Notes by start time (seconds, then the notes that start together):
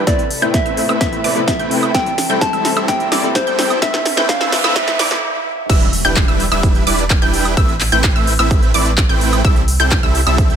Already playing: riser
0.06 A2 C3 A3 B3 C4 E4 A4 B4 D5 E5 E6, kick, snare, closed hi-hat
0.19 closed hi-hat
0.31 open hi-hat
0.42 A2 A3 B3 C4 E4 B4 G5 G6, closed hi-hat
0.54 E5, kick, snare, closed hi-hat
0.66 A3 C4 E4 B4 E5 E6, closed hi-hat
0.77 A2 A3 B3 C4 E4, open hi-hat
0.89 A3 C4 E4 B4 E5 E6, closed hi-hat, high woodblock
1.00 A2 A3 B3 C4 E4 E5, kick, snare, closed hi-hat
1.13 closed hi-hat
1.24 A3 C4 E4 B4 D5 D6, open hi-hat
1.35 A2 A3 B3 C4 E4, closed hi-hat
1.48 E5, kick, snare, closed hi-hat
1.59 A3 C4 E4 B4 G5 G6, closed hi-hat
1.71 C3 A3 B3 C4 E4, open hi-hat
1.83 closed hi-hat, high woodblock
1.94 C3 E3 G3 A3 C4 E4 A4 E5 G5 E6, kick, snare, closed hi-hat
2.06 closed hi-hat
2.18 snare, open hi-hat
2.29 C3 G3 A3 C4 E4 A4 G5 G6, closed hi-hat
2.41 A5, kick, snare, closed hi-hat
2.53 G3 C4 E4 A4 E5 E6, closed hi-hat
2.64 C3 G3 A3 C4 E4, snare, open hi-hat
2.76 G3 C4 E4 A4 E5 E6, closed hi-hat, high woodblock
2.88 C3 G3 A3 C4 E4 G5, kick, snare, closed hi-hat
3.00 closed hi-hat
3.12 G3 C4 E4 A4 D5 D6, snare, open hi-hat
3.23 C3 G3 A3 C4 E4, closed hi-hat
3.35 C5, kick, snare, closed hi-hat
3.47 G3 C4 E4 A4 G5 G6, closed hi-hat
3.58 G3 A3 C4 E4, snare, open hi-hat
3.70 closed hi-hat, high woodblock
3.81 C3 A3 B3 C4 E4 B4 E5 E6, kick, snare, closed hi-hat, noise sweep
3.94 snare, closed hi-hat
4.06 snare, open hi-hat
4.17 C3 A3 B3 C4 E4 B4 G5 G6, snare, closed hi-hat
4.29 F5, kick, snare, closed hi-hat
4.41 A3 C4 E4 B4 E5 E6, snare, closed hi-hat
4.52 C3 A3 B3 C4 E4, snare, open hi-hat
4.64 A3 C4 E4 B4 E5 E6, snare, closed hi-hat, high woodblock
4.75 A3 B3 C4 E4 E5, kick, snare, closed hi-hat
4.88 snare, closed hi-hat
4.99 A3 C4 E4 B4 D5 D6, snare, open hi-hat
5.11 snare, closed hi-hat
5.70 E1 G3 D4 E4 B4 E5 E6, kick, closed hi-hat, crash, impact
5.81 closed hi-hat
5.93 open hi-hat
6.05 E1 G3 D4 E4 B4 G5 G6, closed hi-hat
6.16 kick, clap, closed hi-hat
6.28 E1 G3 D4 E4 B4 E5 E6, closed hi-hat
6.40 open hi-hat
6.52 E1 G3 D4 E4 B4 E5 E6, closed hi-hat, high woodblock
6.63 kick, closed hi-hat
6.75 closed hi-hat
6.87 E1 G3 D4 E4 B4 D5 D6, open hi-hat
6.99 closed hi-hat
7.10 kick, clap, closed hi-hat
7.22 E1 G3 D4 E4 B4 G5 G6, closed hi-hat
7.34 open hi-hat
7.45 closed hi-hat, high woodblock
7.57 A1 A3 C4 E4 B4 E5 E6, kick, closed hi-hat
7.69 closed hi-hat
7.80 clap, open hi-hat
7.92 A1 A3 C4 E4 B4 G5 G6, closed hi-hat
8.04 kick, clap, closed hi-hat
8.16 A1 A3 C4 E4 B4 E5 E6, closed hi-hat
8.27 open hi-hat
8.39 A1 A3 C4 E4 B4 E5 E6, closed hi-hat, high woodblock
8.51 kick, closed hi-hat
8.62 closed hi-hat
8.74 A1 A3 C4 E4 B4 D5 D6, open hi-hat
8.86 closed hi-hat
8.98 kick, clap, closed hi-hat
9.09 A1 A3 C4 E4 B4 G5 G6, closed hi-hat
9.21 open hi-hat
9.33 closed hi-hat, high woodblock
9.45 C2 G3 C4 E4 A4 E5 E6, kick, closed hi-hat
9.56 closed hi-hat
9.68 open hi-hat
9.80 C2 G3 C4 E4 A4 G5 G6, closed hi-hat
9.91 kick, clap, closed hi-hat
10.03 C2 G3 C4 E4 A4 E5 E6, closed hi-hat
10.15 open hi-hat
10.27 C2 G3 C4 E4 A4 E5 E6, closed hi-hat, high woodblock
10.38 kick, closed hi-hat
10.50 closed hi-hat